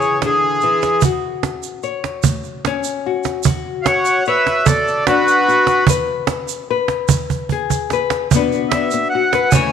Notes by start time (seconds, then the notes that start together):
Already playing: C#3 E3 E4 G#4 C#5
0.02 shaker
0.22 D3 G#4, cajon slap
0.61 E3, shaker
0.82 cajon slap, shaker
1.01 F#2 F#4, cajon bass, shaker
1.43 cajon slap
1.63 shaker
1.83 C#5, shaker
2.04 cajon slap
2.23 A3, cajon bass, shaker
2.44 shaker
2.65 C#4, cajon slap
2.84 shaker
3.06 F#4
3.23 cajon slap, shaker
3.43 F#2 F#4, cajon bass, shaker
3.82 C#5 F5, cajon slap
3.87 F#5
4.05 shaker
4.25 B4 C#5 E5, shaker
4.47 cajon slap
4.65 B3 A4 D5, cajon bass, shaker
4.88 shaker
5.07 D4 F#4 B4, cajon slap
5.28 shaker
5.48 F#4, shaker
5.67 cajon slap, shaker
5.87 E3 B4, cajon bass, shaker
6.07 cajon slap
6.27 cajon slap
6.48 shaker
6.71 B4
6.88 cajon slap
7.09 E4, cajon bass, shaker
7.30 cajon bass, shaker
7.49 G#4, cajon bass
7.70 cajon bass, shaker
7.90 B4, cajon slap, shaker
8.10 cajon slap
8.31 B2 B3, cajon bass, shaker
8.35 D4 F#4 B4
8.52 F#4, shaker
8.69 E5, cajon slap
8.74 D4
8.91 B3, shaker
9.10 F#5
9.15 F#4
9.33 B4, cajon slap
9.50 C#3 E3 A3 G#5, cajon bass, shaker
9.54 C#4 C#5